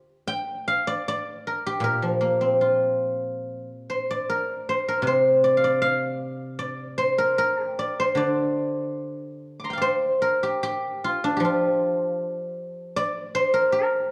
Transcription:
guzheng
Already playing: F4 G4 A#4 C5 D5 F5
0.28 G5
0.68 F5
0.87 D5
1.08 D5
1.47 A#4
1.67 G4
1.80 A#2 A#4
2.02 F3
2.21 A#3
2.41 C4
2.61 F4 G4
3.90 C5
4.11 D5
4.30 A#4
4.69 C5
4.88 A#4
5.02 C3
5.07 C5
5.44 D5
5.57 F5
5.64 D5
5.82 F5
6.59 D5
6.98 C5
7.18 A#4
7.38 A#4
7.63 G4
7.79 D5
8.00 C5
8.15 D3 D5
9.60 D6
9.64 A#5 C6
9.70 F5 G5
9.78 C5 D5
10.22 A#4
10.43 G4
10.63 G4
11.04 F4
11.24 D4
11.37 F3 G4
11.45 F4
12.96 D5
13.35 C5
13.54 A#4
13.72 A#4

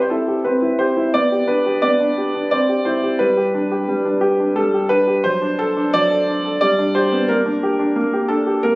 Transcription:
grand piano
Already playing: C4 G4
0.02 C5
0.10 E4 A4
0.28 G4
0.44 C4 B4
0.62 E4
0.79 G4 C5
0.97 E4
1.14 B3 D5
1.32 G4
1.48 D4 B4
1.66 G4
1.82 B3 D5
2.01 D4
2.18 G4
2.35 D4
2.51 C4 D5
2.69 G4
2.85 E4 C5
3.03 G4
3.19 G3 B4
3.37 G4
3.54 D4
3.71 G4
3.88 G3
4.05 D4
4.21 G4
4.40 D4
4.56 G3 A4
4.74 G4
4.89 D4 B4
5.07 G4
5.24 F#3 C5
5.42 D4
5.59 A4
5.77 D4
5.94 F#3 D5
6.11 A4
6.28 D4
6.45 A4
6.61 G3 D5
6.79 D4
6.95 G4 C5
7.12 B3
7.28 A#3 A#4
7.46 D4
7.63 G4
7.79 D4
7.96 A#3
8.13 G4
8.28 D4 A4
8.47 G4
8.63 A#3 A#4

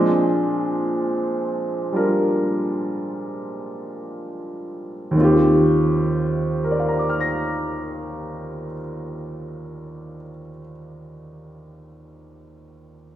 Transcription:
grand piano
Already playing: A#2 F3 G#3 C4 D4 G#4
1.92 G3 D4 F4 A#4
5.11 D#2 D#3
5.17 C4 F4
5.24 G4
6.64 A#4
6.71 D5
6.79 F5
6.88 A#5
6.99 D6
7.10 F6
7.20 A#6

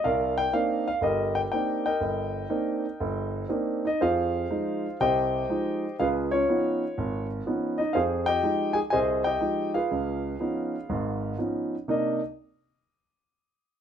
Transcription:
grand piano
0.04 C2 A#4 D5 F5
0.38 G5
0.53 A#3 C4 D4 D#4 F5
0.88 F5
1.01 G1 G4 A#4 D#5
1.35 G5
1.52 A#3 C4 D4 D#4 G5
1.85 A#4 D#5 G5
2.01 G1
2.50 A#3 C4 D4 D#4
3.00 G1
3.49 A#3 C4 D4 D#4
3.85 D#4 D#5
4.01 F2 F4 G#4 C5 F5
4.51 F3 G#3 D#4
5.00 C2 C3 G4 C5 D#5 G5
5.49 F3 G#3 D#4
6.00 C#2 F4 G#4 B4 F5
6.31 C#4 F4 C#5
6.49 F3 B3 C#4 D#4
6.98 G#1
7.46 F3 B3 C#4 D#4
7.78 D#4 D#5
7.93 F2 F4 G#4 C5 F5
8.26 G4 D#5 G5
8.43 F3 G#3 D#4
8.73 G#4 G#5
8.90 C2 G#4 C5 D#5 G#5
9.24 G4 D#5 G5
9.41 F3 G#3 D#4
9.74 F4 G#4 B4 F5
9.91 C#2
10.40 F3 B3 C#4 D#4
10.89 G#1 G#2
11.38 F3 B3 C#4 D#4
11.88 C3 A#3 D4 D#4 D#5

